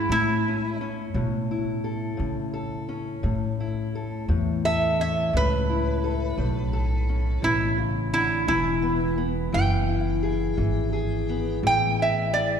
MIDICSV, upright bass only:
0, 0, Header, 1, 2, 480
1, 0, Start_track
1, 0, Tempo, 699301
1, 69, Time_signature, 12, 3, 24, 8
1, 8648, End_track
2, 0, Start_track
2, 0, Title_t, "Upright bass"
2, 0, Program_c, 0, 32
2, 64, Note_on_c, 0, 45, 90
2, 763, Note_off_c, 0, 45, 0
2, 785, Note_on_c, 0, 47, 86
2, 1482, Note_off_c, 0, 47, 0
2, 1506, Note_on_c, 0, 49, 81
2, 2203, Note_off_c, 0, 49, 0
2, 2221, Note_on_c, 0, 45, 83
2, 2920, Note_off_c, 0, 45, 0
2, 2940, Note_on_c, 0, 40, 90
2, 3639, Note_off_c, 0, 40, 0
2, 3660, Note_on_c, 0, 37, 90
2, 4359, Note_off_c, 0, 37, 0
2, 4377, Note_on_c, 0, 35, 90
2, 5078, Note_off_c, 0, 35, 0
2, 5099, Note_on_c, 0, 33, 82
2, 5799, Note_off_c, 0, 33, 0
2, 5818, Note_on_c, 0, 28, 90
2, 6519, Note_off_c, 0, 28, 0
2, 6546, Note_on_c, 0, 30, 88
2, 7245, Note_off_c, 0, 30, 0
2, 7260, Note_on_c, 0, 32, 85
2, 7962, Note_off_c, 0, 32, 0
2, 7983, Note_on_c, 0, 33, 83
2, 8648, Note_off_c, 0, 33, 0
2, 8648, End_track
0, 0, End_of_file